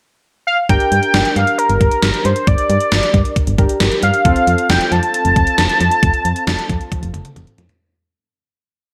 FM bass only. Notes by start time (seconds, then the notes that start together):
0.69 G1
0.92 G2
1.14 G1
1.36 G2
1.70 G1
1.81 G1
2.03 G1
2.25 G2
2.47 G1
2.70 G2
2.92 G1
3.14 G2
3.47 G1
3.58 G1
3.81 G1
4.03 G2
4.25 F1
4.47 F2
4.70 F1
4.92 F2
5.25 F1
5.36 F1
5.58 F1
5.81 F2
6.03 F1
6.25 F2
6.47 F1
6.70 F2
7.03 F1
7.14 F1
7.36 F1
7.58 F2